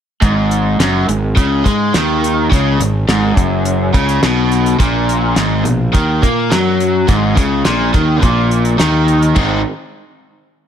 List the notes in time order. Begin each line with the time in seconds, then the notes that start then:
0.22 G#1 G#2, kick, closed hi-hat
0.51 closed hi-hat
0.80 F#1 F#2, snare, closed hi-hat
1.09 G#1 G#2, closed hi-hat
1.36 C#2 C#3, kick, closed hi-hat
1.64 G#2 G#3, kick, closed hi-hat
1.94 D#2 D#3, snare, closed hi-hat
2.24 closed hi-hat
2.50 C#2 C#3, kick, closed hi-hat
2.79 G#1 G#2, closed hi-hat
3.09 G#1 G#2, snare, closed hi-hat
3.37 F#1 F#2, kick, closed hi-hat
3.65 closed hi-hat
3.94 C#2 C#3, kick, closed hi-hat
4.09 closed hi-hat
4.23 B1 B2, snare, closed hi-hat
4.52 closed hi-hat
4.66 closed hi-hat
4.79 A#1 A#2, kick, closed hi-hat
5.09 closed hi-hat
5.36 G#1 G#2, snare, closed hi-hat
5.64 A#1 B2, closed hi-hat
5.93 D#2 D#3, kick, closed hi-hat
6.22 A#2 A#3, kick, closed hi-hat
6.50 F#2 F#3, snare, closed hi-hat
6.80 closed hi-hat
7.08 G#1 G#2, kick, closed hi-hat
7.36 C#2 C#3, kick, closed hi-hat
7.65 A#1 A#2, snare, closed hi-hat
7.94 D#2 D#3, kick, closed hi-hat
8.22 A#1 A#2, kick, closed hi-hat
8.51 closed hi-hat
8.65 closed hi-hat
8.78 D#2 D#3, snare, closed hi-hat
9.08 closed hi-hat
9.22 closed hi-hat
9.35 G#1 G#2 D#3 G#3 C4 D#4, kick, crash